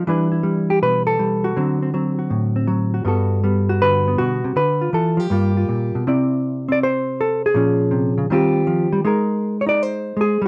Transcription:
0.07 E3 G3 D4 E4 B4
0.32 E4
0.43 G3
0.70 G4
0.82 B2 B4
1.07 A4
1.19 G3
1.44 F#4
1.57 D3 F#3 C4
1.82 C4
1.94 F#3 C4
2.19 F#4
2.30 A2
2.56 C4
2.67 F#3
2.94 F#4
3.05 G2 G3 B3 F#4 A4
3.44 G3 B3
3.69 F#4
3.82 D3 B4
4.08 B3
4.18 B2 F#4
4.44 C3
4.56 D3 B4
4.81 F4
4.93 E3 A4
5.17 F3 G4
5.30 G2 G3 A#3 F4
5.57 F4
5.69 A#2
5.95 B2
6.07 C3 C4 E4 D5
6.69 C4 D5
6.83 C5
7.21 A4
7.46 G#4
7.54 A#2 F3 C#4
7.91 C3
8.18 C#3
8.30 D#3 G3 C4 F4 G4
8.67 F3
8.93 G3
9.05 G#3 D#4 G#4 A#4
9.61 C#5
9.66 D#4 D5
9.83 C5
10.17 G#3
10.21 G#4
10.42 G3

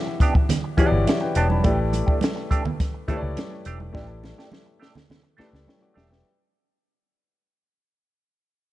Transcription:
Already playing: E3 E4 F#4 G4 D5 E5
0.07 muted clean electric guitar stroke
0.20 B3 D4 G4, kick, closed hi-hat
0.35 muted clean electric guitar stroke, kick
0.49 muted clean electric guitar stroke, snare, closed hi-hat, muted conga, low conga
0.64 muted clean electric guitar stroke
0.77 E3 B3 D4 E4 F#4 G4 A4 C#5, muted fingered electric bass stroke, kick, closed hi-hat, muted conga
0.86 D5
0.92 G1, muted clean electric guitar stroke
1.07 G4 E5, snare, closed hi-hat, high conga
1.21 B4 G5, muted clean electric guitar stroke
1.35 E1 B3 D4 G4 C#5 A5, closed hi-hat
1.50 D5 B5, high conga
1.64 A1 A3 D4 E4 G4 B4 D5, kick, closed hi-hat, muted conga
1.93 muted clean electric guitar stroke, closed hi-hat, muted conga
2.06 A3 D4 G4, kick
2.21 snare, closed hi-hat, high conga
2.36 muted clean electric guitar stroke
2.51 A3 D4 G4, kick, closed hi-hat
2.65 muted clean electric guitar stroke, low conga
2.80 muted clean electric guitar stroke, kick, snare, closed hi-hat, muted conga
2.94 muted clean electric guitar stroke
3.08 A3 D4 E4 G4 A4 B4 C#5, muted fingered electric bass stroke, kick, closed hi-hat, muted conga, low conga
3.17 D5
3.23 C#2, muted clean electric guitar stroke
3.37 snare, closed hi-hat, high conga
3.51 muted clean electric guitar stroke
3.65 E1 A3 D4 G4, closed hi-hat
3.80 muted clean electric guitar stroke, high conga
3.93 A1 A3 D4 E4 G4 B4 D5, kick, snare
4.23 muted clean electric guitar stroke, snare, muted conga
4.38 A3 D4 G4, snare
4.52 snare, high conga
4.66 muted clean electric guitar stroke
4.80 A3 D4 G4, snare
4.95 muted clean electric guitar stroke, snare, low conga
5.10 muted clean electric guitar stroke, snare, muted conga, low conga
5.23 muted clean electric guitar stroke
5.37 A3 D4 E4 G4 A4 B4 D5 A5, muted fingered electric bass stroke, snare, muted conga
5.52 C#2, muted clean electric guitar stroke, snare
5.67 E4 C#5 G5, snare, high conga
5.81 F#4 D5, muted clean electric guitar stroke
5.94 E1 A3 D4 G4 E5, snare, high conga
6.10 B4 G5, muted clean electric guitar stroke, snare, high conga

